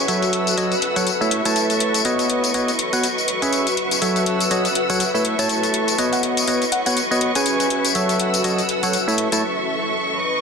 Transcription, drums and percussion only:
0.08 closed hi-hat medium
0.08 tambourine medium
0.23 closed hi-hat soft
0.23 tambourine soft
0.33 closed hi-hat medium
0.47 closed hi-hat soft
0.47 tambourine medium
0.58 closed hi-hat medium
0.58 tambourine soft
0.72 closed hi-hat soft
0.72 tambourine soft
0.82 closed hi-hat medium
0.96 closed hi-hat soft
0.96 tambourine medium
1.07 closed hi-hat medium
1.07 tambourine soft
1.22 tambourine soft
1.31 closed hi-hat medium
1.45 closed hi-hat soft
1.45 tambourine medium
1.56 closed hi-hat medium
1.56 tambourine soft
1.70 closed hi-hat soft
1.70 tambourine soft
1.80 closed hi-hat medium
1.94 closed hi-hat soft
1.94 tambourine medium
2.05 closed hi-hat medium
2.05 tambourine medium
2.19 closed hi-hat soft
2.19 tambourine soft
2.30 closed hi-hat medium
2.44 closed hi-hat soft
2.44 tambourine medium
2.54 closed hi-hat medium
2.54 tambourine medium
2.68 closed hi-hat soft
2.68 tambourine soft
2.79 closed hi-hat medium
2.93 closed hi-hat soft
2.93 tambourine medium
3.03 closed hi-hat medium
3.03 tambourine medium
3.18 tambourine soft
3.28 closed hi-hat medium
3.42 closed hi-hat soft
3.42 tambourine medium
3.53 closed hi-hat medium
3.53 tambourine medium
3.67 closed hi-hat soft
3.67 tambourine soft
3.77 closed hi-hat medium
3.91 closed hi-hat soft
3.91 tambourine medium
4.02 closed hi-hat medium
4.02 tambourine medium
4.16 closed hi-hat soft
4.16 tambourine soft
4.26 closed hi-hat medium
4.41 closed hi-hat soft
4.41 tambourine medium
4.51 closed hi-hat medium
4.51 tambourine medium
4.65 closed hi-hat soft
4.65 tambourine soft
4.75 closed hi-hat medium
4.90 closed hi-hat soft
4.90 tambourine medium
5.00 closed hi-hat medium
5.00 tambourine medium
5.15 tambourine soft
5.25 closed hi-hat medium
5.39 closed hi-hat soft
5.39 tambourine medium
5.49 closed hi-hat medium
5.49 tambourine medium
5.63 closed hi-hat soft
5.63 tambourine soft
5.74 closed hi-hat medium
5.88 closed hi-hat soft
5.88 tambourine medium
5.98 closed hi-hat medium
5.98 tambourine medium
6.13 closed hi-hat soft
6.13 tambourine soft
6.23 closed hi-hat medium
6.37 closed hi-hat soft
6.37 tambourine medium
6.48 closed hi-hat medium
6.48 tambourine medium
6.62 closed hi-hat soft
6.62 tambourine soft
6.72 closed hi-hat medium
6.86 closed hi-hat soft
6.86 tambourine medium
6.97 closed hi-hat medium
6.97 tambourine medium
7.12 tambourine soft
7.21 closed hi-hat medium
7.35 closed hi-hat medium
7.35 tambourine medium
7.46 closed hi-hat medium
7.46 tambourine medium
7.60 closed hi-hat soft
7.60 tambourine soft
7.70 closed hi-hat medium
7.85 closed hi-hat medium
7.85 tambourine medium
7.95 closed hi-hat medium
7.95 tambourine medium
8.09 closed hi-hat soft
8.09 tambourine soft
8.20 closed hi-hat medium
8.34 closed hi-hat medium
8.34 tambourine medium
8.44 closed hi-hat medium
8.44 tambourine medium
8.58 closed hi-hat soft
8.58 tambourine soft
8.69 closed hi-hat medium
8.83 closed hi-hat medium
8.83 tambourine medium
8.93 closed hi-hat medium
8.93 tambourine medium
9.08 tambourine soft
9.18 closed hi-hat medium
9.32 closed hi-hat medium
9.32 tambourine medium

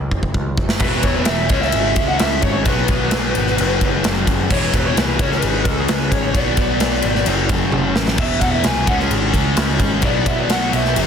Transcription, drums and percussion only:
0.11 kick medium
0.23 kick medium
0.34 kick medium
0.58 kick medium
0.69 snare loud
0.80 kick loud
0.80 crash loud
1.03 kick medium
1.03 ride medium
1.25 snare loud
1.25 ride loud
1.49 kick loud
1.49 ride medium
1.62 snare soft
1.72 ride loud
1.96 kick medium
1.96 ride medium
2.19 snare loud
2.19 ride loud
2.42 kick medium
2.42 ride medium
2.65 kick loud
2.65 ride loud
2.88 kick loud
2.88 ride medium
3.11 snare loud
3.11 ride loud
3.35 ride medium
3.47 snare soft
3.58 ride loud
3.81 kick medium
3.81 ride medium
4.04 snare loud
4.04 ride loud
4.16 snare soft
4.27 kick medium
4.27 ride medium
4.51 kick loud
4.51 crash loud
4.74 kick medium
4.74 ride medium
4.97 snare loud
4.97 ride loud
5.19 kick loud
5.19 ride medium
5.32 snare soft
5.42 ride loud
5.65 kick medium
5.65 ride medium
5.88 snare loud
5.88 ride loud
6.01 snare soft
6.12 kick medium
6.12 ride medium
6.35 kick loud
6.35 ride loud
6.57 kick loud
6.57 ride medium
6.80 snare loud
6.80 ride loud
7.02 ride medium
7.15 snare soft
7.26 ride loud
7.49 kick medium
7.49 ride medium
7.72 high tom medium
7.96 snare loud
8.08 snare loud
8.18 kick loud
8.18 crash loud
8.41 kick medium
8.41 ride medium
8.64 snare loud
8.64 ride loud
8.87 kick loud
8.87 ride medium
9.00 snare soft
9.11 ride loud
9.34 kick medium
9.34 ride medium
9.57 snare loud
9.57 ride loud
9.69 snare soft
9.79 kick medium
9.79 ride medium
10.02 kick loud
10.02 ride loud
10.26 kick medium
10.26 ride medium
10.50 snare loud
10.50 ride loud
10.73 ride medium
10.85 snare soft
10.96 ride loud

